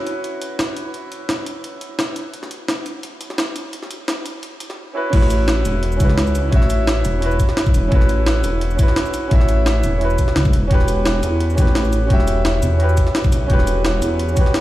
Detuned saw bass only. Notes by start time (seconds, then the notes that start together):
5.13 A1
5.65 E1
6.00 C#2
6.53 A1
7.05 E1
7.75 E1
7.92 A1
8.44 E1
9.32 A1
9.84 E1
10.36 C#2
10.53 E1
10.71 E1
11.23 E2
11.58 A1
12.10 E1
12.63 E2
13.33 B1
13.50 E1
14.02 E2